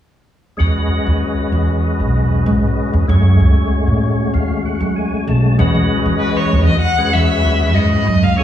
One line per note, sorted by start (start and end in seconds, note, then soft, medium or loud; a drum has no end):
0.57 0.88 E2 medium
0.57 3.04 G#3 medium
0.57 3.05 C#4 soft
0.57 3.05 F#4 medium
0.57 3.06 B4 soft
0.57 3.06 D#5 medium
0.90 muted upright bass stroke soft
1.07 1.20 D#2 medium
1.38 muted upright bass stroke soft
1.52 2.01 E2 medium
2.00 2.48 B1 medium
2.46 2.61 G#2 medium
2.77 muted upright bass stroke soft
2.93 3.08 E2 medium
3.07 3.38 F#2 medium
3.07 5.55 G#3 medium
3.07 5.54 A3 medium
3.07 5.54 C#4 medium
3.07 5.55 F#4 soft
3.07 4.02 C#5 medium
3.40 3.55 C#2 medium
3.72 muted upright bass stroke soft
3.87 4.16 A2 medium
4.03 4.32 C#5 medium
4.34 4.77 D#2 medium
4.34 4.63 F5 medium
4.65 4.94 F#5 medium
4.80 4.95 F#3 medium
4.96 5.25 G#5 medium
5.12 muted upright bass stroke soft
5.27 5.56 B1 medium
5.27 5.57 A5 medium
5.58 5.73 E2 medium
5.58 6.76 G#3 medium
5.58 6.76 C#4 medium
5.58 6.76 F#4 medium
5.58 6.76 B4 medium
5.58 6.76 D#5 medium
5.75 6.03 E3 medium
6.06 6.54 E3 medium
6.19 6.38 B4 medium
6.37 6.65 C#5 medium
6.53 6.67 E2 medium
6.66 6.82 E3 medium
6.66 6.81 D#5 medium
6.81 7.15 F#5 medium
6.98 7.12 G#3 medium
6.98 7.12 C#4 medium
6.98 7.13 F#4 medium
6.98 7.13 B4 medium
6.98 7.14 F#5 medium
6.98 muted upright bass stroke soft
7.13 7.29 E2 medium
7.13 7.72 G#3 medium
7.13 7.72 C#4 medium
7.13 7.73 F#4 medium
7.13 7.73 B4 medium
7.13 7.76 E5 medium
7.13 7.73 E5 medium
7.45 7.76 D#2 medium
7.74 8.04 G#2 medium
7.74 8.07 G#3 medium
7.74 8.07 C#4 medium
7.74 8.07 E4 medium
7.74 8.07 F#4 medium
7.74 8.07 B4 medium
7.74 8.25 D#5 medium
8.07 8.22 F#2 medium
8.23 8.37 C#2 medium
8.23 8.38 F5 medium
8.38 8.44 A3 medium
8.38 8.44 C#4 medium
8.38 8.44 F#4 medium
8.38 8.44 G#4 medium
8.38 8.44 C#5 medium
8.38 muted upright bass stroke soft